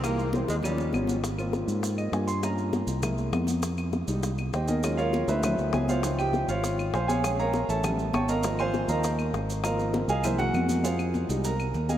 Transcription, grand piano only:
X:1
M:4/4
L:1/8
Q:1/4=200
K:Ebmix
V:1 name="Grand piano"
[=E,A,B,] z [E,A,C] z [F,G,D] z [F,G,D] z | [K:Ab] z4 z e a c' | b6 z2 | z6 [Gceg] [EABe]- |
[EABe] [FBdf]2 [_F_c=c_f]3 [Aa] [=Fcd=f]- | [Fcdf] [Gg]2 [Fcdf]3 [cfac'] [Adfa]- | [Adfa] [Bdfb]2 [=Ad_f=a]3 [^cga^c'] [Be=fb]- | [Befb] [cfac']2 [Befb]3 z2 |
[Befb]3 [Aefa] [=EBc=e] [_G_g]3 | [K:Fm] [FAcf]3 z [Bb]3 [Aefa] |]
V:2 name="Grand piano"
z8 | [K:Ab] z [B,CF]4- [B,CF] [B,CF] z | [B,DF]3 z [A,B,=E]3 z | z3 [G,A,E] z4 |
[_G,A,DF]4 [^F,=A,C=E]4 | [F,CE]3 z4 z | [A,CD] z3 [G,=B,^C] z3 | [F,B,C]3 [F,B,C] z4 |
[F,B,C]3 z [=E,^G,B,]4 | [K:Fm] z3 [G,A,E] z4 |]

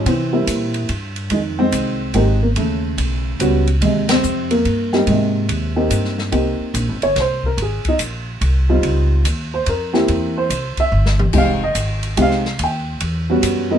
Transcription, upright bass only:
X:1
M:3/4
L:1/8
Q:"Swing" 1/4=144
K:Ab
V:1 name="Upright bass" clef=bass
C,2 B,,2 G,,2 | F,,2 C,,2 A,,,2 | E,,2 =B,,,2 D,,2 | E,,2 F,,2 G,,2 |
A,,2 E,,2 G,,2 | C,, z (3B,,, A,,, G,,, C,,2 | A,,, z B,,,2 C,,2 | D,,2 E,,2 F,,2 |
=E,,2 C,, z G,,,2 | F,,,2 A,,,2 C,,2 | E,,2 _F,,2 ^F,,2 |]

